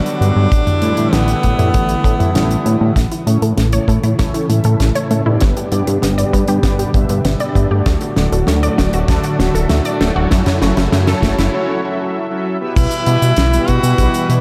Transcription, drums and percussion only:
0.06 closed hi-hat
0.22 closed hi-hat
0.52 kick, closed hi-hat
0.67 closed hi-hat, mid tom
0.82 closed hi-hat
0.97 closed hi-hat
1.13 snare, closed hi-hat
1.28 closed hi-hat
1.43 kick, closed hi-hat
1.59 closed hi-hat, mid tom
1.74 kick, closed hi-hat
1.89 closed hi-hat
2.04 kick, closed hi-hat
2.20 closed hi-hat, mid tom
2.35 snare, closed hi-hat
2.51 closed hi-hat
2.66 closed hi-hat
2.96 kick, snare, closed hi-hat
3.12 closed hi-hat
3.27 closed hi-hat
3.42 closed hi-hat
3.58 snare, closed hi-hat
3.72 closed hi-hat
3.88 kick, closed hi-hat
4.03 closed hi-hat
4.19 kick, snare, closed hi-hat
4.34 closed hi-hat
4.50 closed hi-hat
4.64 closed hi-hat
4.80 snare, closed hi-hat
4.95 closed hi-hat
5.11 closed hi-hat
5.40 kick, snare, closed hi-hat
5.57 closed hi-hat
5.72 closed hi-hat
5.87 closed hi-hat
6.02 snare, closed hi-hat
6.18 closed hi-hat
6.33 kick, closed hi-hat
6.48 closed hi-hat
6.63 kick, snare, closed hi-hat
6.79 closed hi-hat
6.94 kick, closed hi-hat
7.09 closed hi-hat
7.25 snare, closed hi-hat
7.40 closed hi-hat
7.55 kick, closed hi-hat
7.86 kick, snare, closed hi-hat
8.01 closed hi-hat
8.16 snare, closed hi-hat
8.32 closed hi-hat
8.47 snare, closed hi-hat
8.63 closed hi-hat
8.78 kick, snare, closed hi-hat
8.93 closed hi-hat
9.08 kick, snare, closed hi-hat
9.24 closed hi-hat
9.40 snare, closed hi-hat
9.55 closed hi-hat
9.69 snare, closed hi-hat
9.85 closed hi-hat
10.01 snare, closed hi-hat
10.31 kick, snare, closed hi-hat
10.46 snare, closed hi-hat, mid tom
10.62 snare, closed hi-hat
10.77 snare, closed hi-hat
10.92 snare, closed hi-hat
11.07 snare, closed hi-hat
11.23 kick, snare, closed hi-hat
11.39 snare, closed hi-hat
12.76 kick, closed hi-hat, crash, cabasa
12.91 closed hi-hat, cabasa
13.06 closed hi-hat
13.22 closed hi-hat, cabasa
13.37 snare, closed hi-hat, cabasa
13.53 closed hi-hat, cabasa
13.68 kick, closed hi-hat
13.84 closed hi-hat, cabasa
13.98 kick, closed hi-hat, cabasa
14.14 closed hi-hat, cabasa
14.30 closed hi-hat

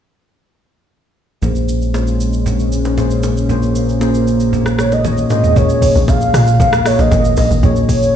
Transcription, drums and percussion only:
1.42 low conga, shaker
1.55 shaker
1.68 shaker
1.82 shaker
1.94 high bongo, shaker
2.07 shaker
2.20 shaker
2.33 shaker
2.46 low conga, shaker
2.59 shaker
2.72 shaker
2.85 low bongo, shaker
2.98 high bongo, low conga, shaker
3.11 shaker
3.23 high bongo, low bongo, shaker
3.37 shaker
3.49 low conga, shaker
3.62 shaker
3.76 shaker
3.89 shaker
4.01 high bongo, shaker
4.14 shaker
4.27 shaker
4.40 shaker
4.53 low conga, shaker
4.66 cross-stick, shaker
4.79 cross-stick, shaker
4.92 low bongo, shaker
5.05 high tom, high bongo, low conga, shaker
5.17 shaker
5.30 mid tom, high bongo, low bongo, shaker
5.44 floor tom, shaker
5.56 kick, low conga, shaker
5.69 shaker
5.82 kick, open hi-hat, shaker
5.96 shaker
6.08 kick, high bongo, shaker
6.21 shaker
6.34 cross-stick, open hi-hat, shaker
6.47 shaker
6.60 kick, low conga, shaker
6.73 cross-stick, shaker
6.86 cross-stick, open hi-hat, shaker
6.99 low bongo, shaker
7.11 kick, high bongo, low conga, shaker
7.24 shaker
7.37 open hi-hat, high bongo, low bongo, shaker
7.51 shaker
7.63 kick, low conga, shaker
7.76 shaker
7.89 kick, open hi-hat, shaker
8.02 shaker

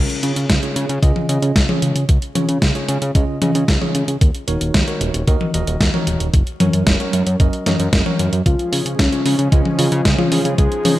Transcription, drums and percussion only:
0.10 closed hi-hat
0.23 closed hi-hat
0.36 closed hi-hat
0.50 kick, snare, closed hi-hat
0.63 closed hi-hat
0.76 closed hi-hat
0.89 closed hi-hat
1.03 kick, closed hi-hat
1.16 high tom
1.29 closed hi-hat
1.42 closed hi-hat
1.56 kick, snare, closed hi-hat
1.69 high tom
1.82 closed hi-hat
1.96 closed hi-hat
2.09 kick, closed hi-hat
2.22 closed hi-hat
2.35 closed hi-hat, high tom
2.49 closed hi-hat
2.62 kick, snare, closed hi-hat
2.75 closed hi-hat
2.89 closed hi-hat
3.02 closed hi-hat
3.15 kick, closed hi-hat
3.42 closed hi-hat, high tom
3.55 closed hi-hat
3.68 kick, snare, closed hi-hat
3.82 high tom
3.95 closed hi-hat
4.08 closed hi-hat
4.21 kick, closed hi-hat
4.35 closed hi-hat
4.48 closed hi-hat
4.61 closed hi-hat
4.74 kick, snare, closed hi-hat
4.88 closed hi-hat
5.01 closed hi-hat
5.14 closed hi-hat
5.27 kick, closed hi-hat
5.41 high tom
5.54 closed hi-hat
5.67 closed hi-hat
5.81 kick, snare, closed hi-hat
5.94 high tom
6.07 closed hi-hat
6.20 closed hi-hat
6.34 kick, closed hi-hat
6.47 closed hi-hat
6.60 closed hi-hat, high tom
6.73 closed hi-hat
6.87 kick, snare, closed hi-hat
7.00 closed hi-hat
7.13 closed hi-hat
7.26 closed hi-hat
7.40 kick, closed hi-hat
7.53 closed hi-hat
7.66 snare, closed hi-hat, high tom
7.80 closed hi-hat
7.93 kick, snare, closed hi-hat
8.06 high tom
8.19 closed hi-hat
8.33 closed hi-hat
8.46 kick, closed hi-hat
8.59 closed hi-hat
8.73 open hi-hat
8.86 closed hi-hat
8.99 kick, snare, closed hi-hat
9.12 closed hi-hat
9.26 open hi-hat
9.39 closed hi-hat
9.52 kick, closed hi-hat
9.65 high tom
9.79 open hi-hat
9.92 closed hi-hat
10.05 kick, snare, closed hi-hat
10.19 high tom
10.32 open hi-hat
10.45 closed hi-hat
10.58 kick, closed hi-hat
10.72 closed hi-hat
10.85 open hi-hat, high tom

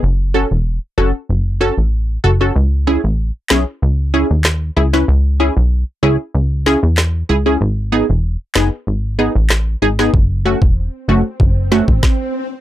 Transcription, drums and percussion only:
3.50 snare, clap
4.44 cross-stick, snare, clap
4.94 snare
6.66 snare
6.97 cross-stick, snare, clap
8.55 snare, clap
9.50 cross-stick, snare, clap
9.99 snare
10.14 kick
10.62 kick
11.40 kick
11.72 snare
11.88 kick
12.03 kick, snare

